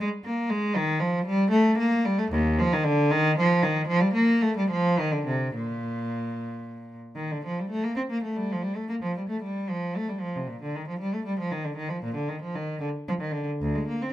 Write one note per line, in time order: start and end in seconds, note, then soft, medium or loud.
0.01 0.09 G#3 loud
0.25 0.50 A#3 loud
0.50 0.76 G#3 loud
0.76 1.02 D#3 loud
1.00 1.27 F3 medium
1.25 1.52 G3 loud
1.51 1.78 A3 loud
1.78 2.05 A#3 loud
2.05 2.19 G3 loud
2.18 2.33 A3 loud
2.32 2.59 D#2 loud
2.59 2.73 F3 loud
2.73 2.87 D#3 loud
2.84 3.11 D3 loud
3.11 3.38 D#3 loud
3.38 3.64 F3 loud
3.63 3.90 D#3 loud
3.87 4.02 F3 loud
4.01 4.16 G3 loud
4.14 4.42 A#3 loud
4.42 4.56 A3 loud
4.57 4.71 G3 loud
4.70 4.98 F3 loud
4.99 5.13 D#3 loud
5.12 5.26 D3 medium
5.26 5.55 C3 medium
5.54 6.97 A#2 medium
7.15 7.28 D#3 medium
7.31 7.44 D3 medium
7.45 7.57 F3 medium
7.59 7.71 G3 medium
7.70 7.83 A3 medium
7.84 7.97 A#3 medium
7.96 8.02 C4 medium
8.10 8.23 A#3 medium
8.23 8.36 A3 medium
8.36 8.50 G3 medium
8.51 8.64 F3 medium
8.62 8.76 G3 medium
8.76 8.90 A3 medium
8.89 8.95 A#3 medium
9.02 9.16 F3 medium
9.17 9.22 G3 medium
9.29 9.43 A3 medium
9.43 9.69 G3 medium
9.69 9.96 F3 medium
9.96 10.09 A3 medium
10.08 10.22 G3 medium
10.20 10.34 F3 medium
10.36 10.48 C3 medium
10.48 10.61 A#2 medium
10.62 10.74 D3 medium
10.75 10.88 D#3 medium
10.88 11.00 F3 medium
10.99 11.12 G3 medium
11.14 11.26 A3 medium
11.25 11.38 G3 medium
11.39 11.52 F3 medium
11.52 11.65 D#3 medium
11.65 11.78 D3 medium
11.76 11.90 D#3 medium
11.89 12.03 F3 medium
12.03 12.16 A#2 medium
12.15 12.29 D3 medium
12.28 12.42 D#3 medium
12.42 12.55 F3 medium
12.55 12.81 D#3 medium
12.80 12.88 D3 medium
13.09 13.13 F3 medium
13.20 13.33 D#3 medium
13.32 13.46 D3 medium
13.61 13.75 D2 medium
13.75 13.88 G#3 medium
13.87 14.00 A#3 medium
14.02 14.13 C4 medium